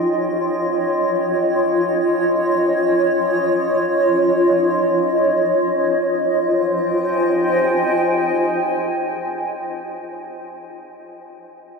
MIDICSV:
0, 0, Header, 1, 2, 480
1, 0, Start_track
1, 0, Key_signature, -4, "minor"
1, 0, Tempo, 500000
1, 11323, End_track
2, 0, Start_track
2, 0, Title_t, "Ambient pad"
2, 0, Program_c, 0, 92
2, 0, Note_on_c, 0, 65, 70
2, 0, Note_on_c, 0, 73, 81
2, 0, Note_on_c, 0, 75, 63
2, 0, Note_on_c, 0, 79, 77
2, 1171, Note_off_c, 0, 79, 0
2, 5648, Note_off_c, 0, 65, 0
2, 5659, Note_on_c, 0, 65, 67
2, 5664, Note_off_c, 0, 73, 0
2, 5680, Note_off_c, 0, 75, 0
2, 5798, Note_on_c, 0, 72, 65
2, 5957, Note_on_c, 0, 75, 78
2, 6073, Note_on_c, 0, 79, 72
2, 6193, Note_on_c, 0, 80, 64
2, 8830, Note_off_c, 0, 65, 0
2, 8969, Note_off_c, 0, 72, 0
2, 9127, Note_off_c, 0, 75, 0
2, 9244, Note_off_c, 0, 79, 0
2, 9364, Note_off_c, 0, 80, 0
2, 11323, End_track
0, 0, End_of_file